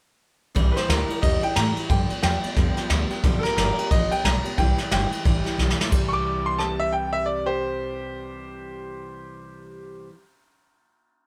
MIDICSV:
0, 0, Header, 1, 6, 480
1, 0, Start_track
1, 0, Key_signature, 0, "major"
1, 0, Tempo, 335008
1, 802, Time_signature, 4, 2, 24, 8
1, 16146, End_track
2, 0, Start_track
2, 0, Title_t, "Upright piano"
2, 0, Program_c, 0, 0
2, 1030, Note_on_c, 0, 71, 59
2, 1060, Note_off_c, 0, 71, 0
2, 1096, Note_on_c, 0, 72, 82
2, 1274, Note_on_c, 0, 70, 76
2, 1276, Note_off_c, 0, 72, 0
2, 1741, Note_off_c, 0, 70, 0
2, 1750, Note_on_c, 0, 75, 91
2, 2036, Note_off_c, 0, 75, 0
2, 2050, Note_on_c, 0, 79, 92
2, 2232, Note_off_c, 0, 79, 0
2, 2233, Note_on_c, 0, 82, 89
2, 2700, Note_off_c, 0, 82, 0
2, 2717, Note_on_c, 0, 79, 74
2, 3168, Note_off_c, 0, 79, 0
2, 3189, Note_on_c, 0, 79, 98
2, 4122, Note_off_c, 0, 79, 0
2, 4854, Note_on_c, 0, 69, 65
2, 4887, Note_off_c, 0, 69, 0
2, 4916, Note_on_c, 0, 70, 108
2, 5086, Note_off_c, 0, 70, 0
2, 5108, Note_on_c, 0, 70, 96
2, 5577, Note_off_c, 0, 70, 0
2, 5601, Note_on_c, 0, 75, 100
2, 5881, Note_off_c, 0, 75, 0
2, 5897, Note_on_c, 0, 79, 107
2, 6075, Note_off_c, 0, 79, 0
2, 6086, Note_on_c, 0, 82, 93
2, 6548, Note_off_c, 0, 82, 0
2, 6559, Note_on_c, 0, 79, 93
2, 7022, Note_off_c, 0, 79, 0
2, 7043, Note_on_c, 0, 79, 91
2, 7975, Note_off_c, 0, 79, 0
2, 8719, Note_on_c, 0, 85, 77
2, 8748, Note_off_c, 0, 85, 0
2, 8785, Note_on_c, 0, 86, 103
2, 9247, Note_off_c, 0, 86, 0
2, 9255, Note_on_c, 0, 84, 85
2, 9435, Note_on_c, 0, 81, 92
2, 9439, Note_off_c, 0, 84, 0
2, 9724, Note_off_c, 0, 81, 0
2, 9736, Note_on_c, 0, 76, 89
2, 9920, Note_off_c, 0, 76, 0
2, 9923, Note_on_c, 0, 79, 91
2, 10208, Note_off_c, 0, 79, 0
2, 10211, Note_on_c, 0, 76, 94
2, 10398, Note_off_c, 0, 76, 0
2, 10398, Note_on_c, 0, 74, 85
2, 10686, Note_off_c, 0, 74, 0
2, 10688, Note_on_c, 0, 67, 73
2, 10695, Note_on_c, 0, 72, 88
2, 14415, Note_off_c, 0, 67, 0
2, 14419, Note_off_c, 0, 72, 0
2, 16146, End_track
3, 0, Start_track
3, 0, Title_t, "Steel-string acoustic guitar"
3, 0, Program_c, 1, 25
3, 783, Note_on_c, 1, 48, 89
3, 793, Note_on_c, 1, 52, 92
3, 800, Note_on_c, 1, 55, 96
3, 809, Note_on_c, 1, 64, 96
3, 817, Note_on_c, 1, 67, 92
3, 1059, Note_off_c, 1, 67, 0
3, 1076, Note_on_c, 1, 67, 55
3, 1081, Note_off_c, 1, 64, 0
3, 1083, Note_off_c, 1, 48, 0
3, 1088, Note_off_c, 1, 52, 0
3, 1091, Note_off_c, 1, 55, 0
3, 1098, Note_on_c, 1, 64, 45
3, 1122, Note_on_c, 1, 55, 45
3, 1269, Note_off_c, 1, 55, 0
3, 1271, Note_on_c, 1, 52, 62
3, 1272, Note_off_c, 1, 67, 0
3, 1283, Note_off_c, 1, 64, 0
3, 1287, Note_on_c, 1, 55, 73
3, 1304, Note_on_c, 1, 64, 78
3, 1315, Note_on_c, 1, 67, 73
3, 1532, Note_off_c, 1, 67, 0
3, 1549, Note_on_c, 1, 67, 55
3, 1562, Note_off_c, 1, 64, 0
3, 1566, Note_off_c, 1, 52, 0
3, 1574, Note_off_c, 1, 55, 0
3, 1579, Note_on_c, 1, 64, 51
3, 1599, Note_on_c, 1, 55, 44
3, 1741, Note_on_c, 1, 48, 69
3, 1747, Note_off_c, 1, 55, 0
3, 1748, Note_off_c, 1, 67, 0
3, 1753, Note_off_c, 1, 64, 0
3, 1755, Note_on_c, 1, 52, 70
3, 1764, Note_on_c, 1, 55, 85
3, 1771, Note_on_c, 1, 64, 78
3, 1775, Note_on_c, 1, 67, 81
3, 2015, Note_off_c, 1, 67, 0
3, 2033, Note_on_c, 1, 67, 57
3, 2040, Note_off_c, 1, 48, 0
3, 2042, Note_off_c, 1, 64, 0
3, 2048, Note_off_c, 1, 52, 0
3, 2052, Note_off_c, 1, 55, 0
3, 2060, Note_on_c, 1, 64, 53
3, 2083, Note_on_c, 1, 55, 42
3, 2228, Note_on_c, 1, 52, 59
3, 2229, Note_off_c, 1, 67, 0
3, 2230, Note_off_c, 1, 55, 0
3, 2242, Note_off_c, 1, 64, 0
3, 2247, Note_on_c, 1, 55, 58
3, 2260, Note_on_c, 1, 64, 59
3, 2271, Note_on_c, 1, 67, 69
3, 2504, Note_off_c, 1, 67, 0
3, 2521, Note_on_c, 1, 67, 54
3, 2523, Note_off_c, 1, 52, 0
3, 2532, Note_off_c, 1, 64, 0
3, 2533, Note_off_c, 1, 55, 0
3, 2550, Note_on_c, 1, 64, 53
3, 2572, Note_on_c, 1, 55, 46
3, 2713, Note_off_c, 1, 67, 0
3, 2714, Note_on_c, 1, 43, 79
3, 2721, Note_off_c, 1, 55, 0
3, 2724, Note_on_c, 1, 50, 80
3, 2727, Note_off_c, 1, 64, 0
3, 2730, Note_on_c, 1, 53, 95
3, 2739, Note_on_c, 1, 55, 84
3, 2744, Note_on_c, 1, 59, 82
3, 2751, Note_on_c, 1, 67, 93
3, 2979, Note_off_c, 1, 67, 0
3, 2996, Note_on_c, 1, 67, 52
3, 3000, Note_off_c, 1, 59, 0
3, 3006, Note_off_c, 1, 43, 0
3, 3011, Note_off_c, 1, 50, 0
3, 3014, Note_off_c, 1, 53, 0
3, 3017, Note_on_c, 1, 59, 51
3, 3018, Note_off_c, 1, 55, 0
3, 3034, Note_on_c, 1, 55, 50
3, 3046, Note_on_c, 1, 53, 45
3, 3167, Note_off_c, 1, 53, 0
3, 3185, Note_on_c, 1, 53, 63
3, 3187, Note_off_c, 1, 55, 0
3, 3190, Note_off_c, 1, 67, 0
3, 3200, Note_off_c, 1, 59, 0
3, 3204, Note_on_c, 1, 55, 70
3, 3219, Note_on_c, 1, 59, 71
3, 3231, Note_on_c, 1, 67, 71
3, 3466, Note_off_c, 1, 67, 0
3, 3481, Note_off_c, 1, 53, 0
3, 3483, Note_on_c, 1, 67, 58
3, 3488, Note_off_c, 1, 59, 0
3, 3490, Note_off_c, 1, 55, 0
3, 3505, Note_on_c, 1, 59, 53
3, 3520, Note_on_c, 1, 55, 47
3, 3531, Note_on_c, 1, 53, 50
3, 3673, Note_off_c, 1, 53, 0
3, 3673, Note_off_c, 1, 67, 0
3, 3679, Note_on_c, 1, 43, 85
3, 3681, Note_off_c, 1, 55, 0
3, 3684, Note_off_c, 1, 59, 0
3, 3684, Note_on_c, 1, 50, 76
3, 3691, Note_on_c, 1, 53, 84
3, 3698, Note_on_c, 1, 55, 86
3, 3703, Note_on_c, 1, 59, 83
3, 3711, Note_on_c, 1, 67, 90
3, 3947, Note_off_c, 1, 67, 0
3, 3960, Note_off_c, 1, 59, 0
3, 3964, Note_on_c, 1, 67, 68
3, 3968, Note_off_c, 1, 43, 0
3, 3970, Note_off_c, 1, 50, 0
3, 3974, Note_off_c, 1, 53, 0
3, 3977, Note_on_c, 1, 59, 62
3, 3978, Note_off_c, 1, 55, 0
3, 3999, Note_on_c, 1, 55, 60
3, 4013, Note_on_c, 1, 53, 54
3, 4135, Note_off_c, 1, 53, 0
3, 4149, Note_off_c, 1, 55, 0
3, 4152, Note_on_c, 1, 53, 67
3, 4153, Note_off_c, 1, 67, 0
3, 4160, Note_off_c, 1, 59, 0
3, 4166, Note_on_c, 1, 55, 75
3, 4179, Note_on_c, 1, 59, 81
3, 4194, Note_on_c, 1, 67, 72
3, 4432, Note_off_c, 1, 67, 0
3, 4445, Note_off_c, 1, 53, 0
3, 4449, Note_on_c, 1, 67, 58
3, 4451, Note_off_c, 1, 55, 0
3, 4452, Note_off_c, 1, 59, 0
3, 4469, Note_on_c, 1, 59, 63
3, 4487, Note_on_c, 1, 55, 54
3, 4501, Note_on_c, 1, 53, 54
3, 4631, Note_off_c, 1, 53, 0
3, 4634, Note_on_c, 1, 43, 95
3, 4636, Note_off_c, 1, 67, 0
3, 4640, Note_off_c, 1, 55, 0
3, 4642, Note_on_c, 1, 50, 96
3, 4646, Note_off_c, 1, 59, 0
3, 4649, Note_on_c, 1, 53, 101
3, 4657, Note_on_c, 1, 55, 94
3, 4662, Note_on_c, 1, 59, 95
3, 4667, Note_on_c, 1, 67, 93
3, 4914, Note_off_c, 1, 67, 0
3, 4926, Note_off_c, 1, 43, 0
3, 4930, Note_off_c, 1, 50, 0
3, 4931, Note_on_c, 1, 67, 51
3, 4933, Note_off_c, 1, 53, 0
3, 4934, Note_off_c, 1, 59, 0
3, 4937, Note_off_c, 1, 55, 0
3, 4966, Note_on_c, 1, 55, 46
3, 4980, Note_on_c, 1, 53, 47
3, 5097, Note_off_c, 1, 53, 0
3, 5115, Note_on_c, 1, 53, 63
3, 5117, Note_off_c, 1, 67, 0
3, 5119, Note_off_c, 1, 55, 0
3, 5136, Note_on_c, 1, 55, 63
3, 5152, Note_on_c, 1, 59, 63
3, 5161, Note_on_c, 1, 67, 75
3, 5403, Note_off_c, 1, 67, 0
3, 5406, Note_off_c, 1, 53, 0
3, 5417, Note_off_c, 1, 55, 0
3, 5418, Note_off_c, 1, 59, 0
3, 5420, Note_on_c, 1, 67, 56
3, 5435, Note_on_c, 1, 59, 52
3, 5453, Note_on_c, 1, 55, 55
3, 5467, Note_on_c, 1, 53, 51
3, 5602, Note_off_c, 1, 67, 0
3, 5605, Note_off_c, 1, 53, 0
3, 5608, Note_on_c, 1, 43, 71
3, 5610, Note_off_c, 1, 59, 0
3, 5616, Note_on_c, 1, 50, 79
3, 5618, Note_off_c, 1, 55, 0
3, 5622, Note_on_c, 1, 53, 75
3, 5633, Note_on_c, 1, 55, 82
3, 5634, Note_on_c, 1, 59, 81
3, 5640, Note_on_c, 1, 67, 81
3, 5868, Note_off_c, 1, 67, 0
3, 5885, Note_on_c, 1, 67, 63
3, 5886, Note_off_c, 1, 59, 0
3, 5893, Note_off_c, 1, 43, 0
3, 5898, Note_off_c, 1, 50, 0
3, 5900, Note_off_c, 1, 53, 0
3, 5900, Note_off_c, 1, 55, 0
3, 5903, Note_on_c, 1, 59, 59
3, 5917, Note_on_c, 1, 55, 51
3, 5931, Note_on_c, 1, 53, 48
3, 6055, Note_off_c, 1, 53, 0
3, 6072, Note_on_c, 1, 53, 54
3, 6074, Note_off_c, 1, 55, 0
3, 6075, Note_off_c, 1, 67, 0
3, 6084, Note_off_c, 1, 59, 0
3, 6091, Note_on_c, 1, 55, 59
3, 6107, Note_on_c, 1, 59, 65
3, 6119, Note_on_c, 1, 67, 62
3, 6351, Note_off_c, 1, 67, 0
3, 6366, Note_off_c, 1, 53, 0
3, 6368, Note_on_c, 1, 67, 52
3, 6370, Note_off_c, 1, 59, 0
3, 6376, Note_off_c, 1, 55, 0
3, 6388, Note_on_c, 1, 59, 59
3, 6401, Note_on_c, 1, 55, 47
3, 6412, Note_on_c, 1, 53, 50
3, 6557, Note_off_c, 1, 67, 0
3, 6559, Note_on_c, 1, 48, 79
3, 6560, Note_off_c, 1, 55, 0
3, 6566, Note_off_c, 1, 53, 0
3, 6567, Note_off_c, 1, 59, 0
3, 6572, Note_on_c, 1, 52, 81
3, 6577, Note_on_c, 1, 55, 85
3, 6587, Note_on_c, 1, 64, 91
3, 6593, Note_on_c, 1, 67, 90
3, 6827, Note_off_c, 1, 67, 0
3, 6844, Note_on_c, 1, 67, 55
3, 6850, Note_off_c, 1, 48, 0
3, 6856, Note_off_c, 1, 64, 0
3, 6857, Note_off_c, 1, 52, 0
3, 6859, Note_off_c, 1, 55, 0
3, 6873, Note_on_c, 1, 64, 46
3, 6890, Note_on_c, 1, 55, 47
3, 7034, Note_on_c, 1, 52, 64
3, 7035, Note_off_c, 1, 67, 0
3, 7040, Note_off_c, 1, 55, 0
3, 7050, Note_off_c, 1, 64, 0
3, 7057, Note_on_c, 1, 55, 68
3, 7071, Note_on_c, 1, 64, 67
3, 7084, Note_on_c, 1, 67, 74
3, 7308, Note_off_c, 1, 67, 0
3, 7325, Note_on_c, 1, 67, 53
3, 7329, Note_off_c, 1, 52, 0
3, 7334, Note_off_c, 1, 64, 0
3, 7340, Note_off_c, 1, 55, 0
3, 7351, Note_on_c, 1, 64, 53
3, 7375, Note_on_c, 1, 55, 47
3, 7516, Note_off_c, 1, 55, 0
3, 7516, Note_on_c, 1, 48, 76
3, 7517, Note_off_c, 1, 67, 0
3, 7523, Note_off_c, 1, 64, 0
3, 7524, Note_on_c, 1, 52, 80
3, 7533, Note_on_c, 1, 55, 76
3, 7540, Note_on_c, 1, 64, 74
3, 7543, Note_on_c, 1, 67, 81
3, 7786, Note_off_c, 1, 67, 0
3, 7803, Note_on_c, 1, 67, 64
3, 7810, Note_off_c, 1, 48, 0
3, 7813, Note_off_c, 1, 64, 0
3, 7814, Note_off_c, 1, 52, 0
3, 7819, Note_off_c, 1, 55, 0
3, 7830, Note_on_c, 1, 64, 58
3, 7850, Note_on_c, 1, 55, 53
3, 7989, Note_on_c, 1, 52, 74
3, 7995, Note_off_c, 1, 55, 0
3, 7996, Note_off_c, 1, 67, 0
3, 8010, Note_off_c, 1, 64, 0
3, 8012, Note_on_c, 1, 55, 69
3, 8026, Note_on_c, 1, 64, 69
3, 8037, Note_on_c, 1, 67, 82
3, 8270, Note_off_c, 1, 67, 0
3, 8288, Note_off_c, 1, 52, 0
3, 8298, Note_off_c, 1, 64, 0
3, 8299, Note_off_c, 1, 55, 0
3, 8315, Note_on_c, 1, 64, 53
3, 8332, Note_on_c, 1, 55, 51
3, 8447, Note_on_c, 1, 48, 80
3, 8480, Note_on_c, 1, 52, 91
3, 8487, Note_off_c, 1, 55, 0
3, 8494, Note_off_c, 1, 64, 0
3, 8505, Note_on_c, 1, 55, 95
3, 8530, Note_on_c, 1, 64, 92
3, 8549, Note_on_c, 1, 67, 97
3, 14461, Note_off_c, 1, 48, 0
3, 14477, Note_off_c, 1, 52, 0
3, 14489, Note_off_c, 1, 55, 0
3, 14502, Note_off_c, 1, 64, 0
3, 14512, Note_off_c, 1, 67, 0
3, 16146, End_track
4, 0, Start_track
4, 0, Title_t, "Upright bass"
4, 0, Program_c, 2, 32
4, 799, Note_on_c, 2, 36, 84
4, 1082, Note_off_c, 2, 36, 0
4, 1269, Note_on_c, 2, 38, 93
4, 1557, Note_off_c, 2, 38, 0
4, 1763, Note_on_c, 2, 40, 88
4, 2043, Note_off_c, 2, 40, 0
4, 2241, Note_on_c, 2, 45, 93
4, 2521, Note_off_c, 2, 45, 0
4, 2717, Note_on_c, 2, 43, 81
4, 2999, Note_off_c, 2, 43, 0
4, 3197, Note_on_c, 2, 40, 101
4, 3479, Note_off_c, 2, 40, 0
4, 3676, Note_on_c, 2, 41, 89
4, 3958, Note_off_c, 2, 41, 0
4, 4150, Note_on_c, 2, 38, 92
4, 4434, Note_off_c, 2, 38, 0
4, 4640, Note_on_c, 2, 35, 93
4, 4913, Note_off_c, 2, 35, 0
4, 5112, Note_on_c, 2, 31, 96
4, 5396, Note_off_c, 2, 31, 0
4, 5600, Note_on_c, 2, 33, 86
4, 5881, Note_off_c, 2, 33, 0
4, 6078, Note_on_c, 2, 35, 92
4, 6357, Note_off_c, 2, 35, 0
4, 6560, Note_on_c, 2, 36, 88
4, 6842, Note_off_c, 2, 36, 0
4, 7039, Note_on_c, 2, 31, 95
4, 7318, Note_off_c, 2, 31, 0
4, 7526, Note_on_c, 2, 33, 81
4, 7807, Note_off_c, 2, 33, 0
4, 8000, Note_on_c, 2, 35, 86
4, 8284, Note_off_c, 2, 35, 0
4, 8485, Note_on_c, 2, 36, 91
4, 14423, Note_off_c, 2, 36, 0
4, 16146, End_track
5, 0, Start_track
5, 0, Title_t, "Muted upright bass strokes"
5, 1564, Note_on_c, 9, 29, 68
5, 1707, Note_off_c, 9, 29, 0
5, 2532, Note_on_c, 9, 29, 68
5, 2675, Note_off_c, 9, 29, 0
5, 3008, Note_on_c, 9, 29, 76
5, 3151, Note_off_c, 9, 29, 0
5, 3492, Note_on_c, 9, 29, 66
5, 3635, Note_off_c, 9, 29, 0
5, 3965, Note_on_c, 9, 29, 67
5, 4109, Note_off_c, 9, 29, 0
5, 4443, Note_on_c, 9, 29, 71
5, 4586, Note_off_c, 9, 29, 0
5, 4922, Note_on_c, 9, 29, 72
5, 5065, Note_off_c, 9, 29, 0
5, 5405, Note_on_c, 9, 29, 68
5, 5549, Note_off_c, 9, 29, 0
5, 5891, Note_on_c, 9, 29, 72
5, 6034, Note_off_c, 9, 29, 0
5, 7327, Note_on_c, 9, 29, 68
5, 7470, Note_off_c, 9, 29, 0
5, 16146, End_track
6, 0, Start_track
6, 0, Title_t, "Drums"
6, 801, Note_on_c, 9, 51, 84
6, 803, Note_on_c, 9, 36, 116
6, 944, Note_off_c, 9, 51, 0
6, 946, Note_off_c, 9, 36, 0
6, 1098, Note_on_c, 9, 38, 36
6, 1098, Note_on_c, 9, 51, 63
6, 1241, Note_off_c, 9, 38, 0
6, 1241, Note_off_c, 9, 51, 0
6, 1284, Note_on_c, 9, 38, 112
6, 1284, Note_on_c, 9, 51, 90
6, 1427, Note_off_c, 9, 38, 0
6, 1427, Note_off_c, 9, 51, 0
6, 1579, Note_on_c, 9, 51, 76
6, 1722, Note_off_c, 9, 51, 0
6, 1762, Note_on_c, 9, 36, 117
6, 1764, Note_on_c, 9, 51, 100
6, 1905, Note_off_c, 9, 36, 0
6, 1907, Note_off_c, 9, 51, 0
6, 2045, Note_on_c, 9, 51, 64
6, 2188, Note_off_c, 9, 51, 0
6, 2234, Note_on_c, 9, 38, 116
6, 2234, Note_on_c, 9, 51, 96
6, 2378, Note_off_c, 9, 38, 0
6, 2378, Note_off_c, 9, 51, 0
6, 2531, Note_on_c, 9, 51, 61
6, 2675, Note_off_c, 9, 51, 0
6, 2720, Note_on_c, 9, 36, 110
6, 2721, Note_on_c, 9, 51, 87
6, 2863, Note_off_c, 9, 36, 0
6, 2864, Note_off_c, 9, 51, 0
6, 3008, Note_on_c, 9, 51, 65
6, 3152, Note_off_c, 9, 51, 0
6, 3196, Note_on_c, 9, 38, 105
6, 3196, Note_on_c, 9, 51, 89
6, 3339, Note_off_c, 9, 38, 0
6, 3339, Note_off_c, 9, 51, 0
6, 3489, Note_on_c, 9, 51, 66
6, 3633, Note_off_c, 9, 51, 0
6, 3674, Note_on_c, 9, 38, 37
6, 3674, Note_on_c, 9, 51, 83
6, 3677, Note_on_c, 9, 36, 127
6, 3818, Note_off_c, 9, 38, 0
6, 3818, Note_off_c, 9, 51, 0
6, 3821, Note_off_c, 9, 36, 0
6, 3965, Note_on_c, 9, 38, 33
6, 3965, Note_on_c, 9, 51, 59
6, 4108, Note_off_c, 9, 38, 0
6, 4108, Note_off_c, 9, 51, 0
6, 4152, Note_on_c, 9, 38, 114
6, 4152, Note_on_c, 9, 51, 76
6, 4295, Note_off_c, 9, 38, 0
6, 4295, Note_off_c, 9, 51, 0
6, 4447, Note_on_c, 9, 51, 60
6, 4590, Note_off_c, 9, 51, 0
6, 4639, Note_on_c, 9, 36, 114
6, 4639, Note_on_c, 9, 38, 36
6, 4639, Note_on_c, 9, 51, 85
6, 4782, Note_off_c, 9, 36, 0
6, 4782, Note_off_c, 9, 38, 0
6, 4782, Note_off_c, 9, 51, 0
6, 4939, Note_on_c, 9, 38, 35
6, 4939, Note_on_c, 9, 51, 64
6, 5083, Note_off_c, 9, 38, 0
6, 5083, Note_off_c, 9, 51, 0
6, 5126, Note_on_c, 9, 38, 112
6, 5126, Note_on_c, 9, 51, 94
6, 5270, Note_off_c, 9, 38, 0
6, 5270, Note_off_c, 9, 51, 0
6, 5424, Note_on_c, 9, 51, 74
6, 5567, Note_off_c, 9, 51, 0
6, 5603, Note_on_c, 9, 36, 122
6, 5604, Note_on_c, 9, 51, 97
6, 5746, Note_off_c, 9, 36, 0
6, 5747, Note_off_c, 9, 51, 0
6, 5898, Note_on_c, 9, 51, 64
6, 6042, Note_off_c, 9, 51, 0
6, 6087, Note_on_c, 9, 38, 114
6, 6087, Note_on_c, 9, 51, 90
6, 6231, Note_off_c, 9, 38, 0
6, 6231, Note_off_c, 9, 51, 0
6, 6377, Note_on_c, 9, 51, 60
6, 6520, Note_off_c, 9, 51, 0
6, 6562, Note_on_c, 9, 51, 89
6, 6564, Note_on_c, 9, 36, 116
6, 6705, Note_off_c, 9, 51, 0
6, 6708, Note_off_c, 9, 36, 0
6, 6851, Note_on_c, 9, 38, 34
6, 6851, Note_on_c, 9, 51, 68
6, 6995, Note_off_c, 9, 38, 0
6, 6995, Note_off_c, 9, 51, 0
6, 7041, Note_on_c, 9, 38, 114
6, 7041, Note_on_c, 9, 51, 86
6, 7184, Note_off_c, 9, 38, 0
6, 7184, Note_off_c, 9, 51, 0
6, 7339, Note_on_c, 9, 51, 71
6, 7483, Note_off_c, 9, 51, 0
6, 7529, Note_on_c, 9, 36, 127
6, 7532, Note_on_c, 9, 51, 94
6, 7672, Note_off_c, 9, 36, 0
6, 7675, Note_off_c, 9, 51, 0
6, 7823, Note_on_c, 9, 38, 30
6, 7823, Note_on_c, 9, 51, 61
6, 7966, Note_off_c, 9, 38, 0
6, 7966, Note_off_c, 9, 51, 0
6, 8011, Note_on_c, 9, 38, 62
6, 8154, Note_off_c, 9, 38, 0
6, 8170, Note_on_c, 9, 38, 66
6, 8314, Note_off_c, 9, 38, 0
6, 8322, Note_on_c, 9, 38, 103
6, 8465, Note_off_c, 9, 38, 0
6, 8483, Note_on_c, 9, 49, 92
6, 8485, Note_on_c, 9, 36, 117
6, 8626, Note_off_c, 9, 49, 0
6, 8628, Note_off_c, 9, 36, 0
6, 9444, Note_on_c, 9, 37, 68
6, 9587, Note_off_c, 9, 37, 0
6, 16146, End_track
0, 0, End_of_file